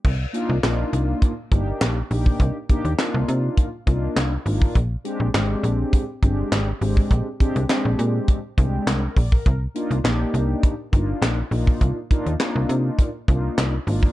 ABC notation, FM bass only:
X:1
M:4/4
L:1/16
Q:1/4=102
K:Cm
V:1 name="FM bass" clef=bass
C,,2 z C,, B,,,2 C,,2 z2 G,,,2 B,,,2 B,,,2 | C,, z2 E,, z C,, C,2 z2 C,,2 C,,2 A,,,2 | B,,,2 z B,,, A,,,2 B,,,2 z2 G,,,2 A,,,2 A,,,2 | B,,, z2 C,, z B,,, B,,2 z2 C,,2 C,,2 B,,,2 |
C,,2 z C,, B,,,2 C,,2 z2 G,,,2 B,,,2 B,,,2 | C,, z2 E,, z C,, C,2 z2 C,,2 C,,2 A,,,2 |]